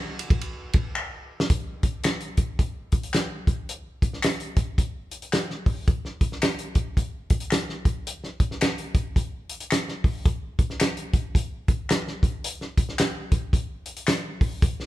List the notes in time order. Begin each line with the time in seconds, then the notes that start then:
0.19 ride
0.30 kick, ride
0.41 ride
0.73 kick, ride
0.95 finger snap
1.40 snare
1.50 kick, closed hi-hat
1.83 kick, closed hi-hat
2.03 finger snap, snare, closed hi-hat
2.20 closed hi-hat
2.37 kick, closed hi-hat
2.59 kick, closed hi-hat
2.92 kick, closed hi-hat
3.03 closed hi-hat
3.13 finger snap, snare, closed hi-hat
3.47 kick, closed hi-hat
3.69 closed hi-hat
4.02 kick, closed hi-hat
4.13 snare
4.22 finger snap, snare, closed hi-hat
4.40 closed hi-hat
4.56 kick, closed hi-hat
4.78 kick, closed hi-hat
5.11 closed hi-hat
5.22 closed hi-hat
5.32 finger snap, snare, closed hi-hat
5.50 snare
5.66 kick, open hi-hat
5.88 kick, closed hi-hat
6.05 snare
6.21 kick, closed hi-hat
6.32 snare
6.41 finger snap, snare, closed hi-hat
6.58 closed hi-hat
6.75 kick, closed hi-hat
6.97 kick, closed hi-hat
7.30 kick, closed hi-hat
7.40 closed hi-hat
7.50 finger snap, snare, closed hi-hat
7.69 snare
7.85 kick, closed hi-hat
8.07 closed hi-hat
8.24 snare
8.40 kick, closed hi-hat
8.51 snare
8.61 finger snap, snare, closed hi-hat
8.78 closed hi-hat
8.94 kick, closed hi-hat
9.16 kick, closed hi-hat
9.49 closed hi-hat
9.60 closed hi-hat
9.71 finger snap, snare, closed hi-hat
9.88 snare
10.04 kick, open hi-hat
10.26 kick, closed hi-hat
10.59 kick, closed hi-hat
10.70 snare
10.80 finger snap, snare, closed hi-hat
10.97 closed hi-hat
11.13 kick, closed hi-hat
11.35 kick, closed hi-hat
11.68 kick, closed hi-hat
11.89 finger snap, snare, closed hi-hat
12.08 snare
12.23 kick, closed hi-hat
12.44 closed hi-hat
12.61 snare
12.77 kick, closed hi-hat
12.89 snare
12.98 finger snap, snare, closed hi-hat
13.32 kick, closed hi-hat
13.53 kick, closed hi-hat
13.86 closed hi-hat
13.96 closed hi-hat
14.07 finger snap, snare, closed hi-hat
14.41 kick, open hi-hat
14.62 kick, closed hi-hat
14.80 snare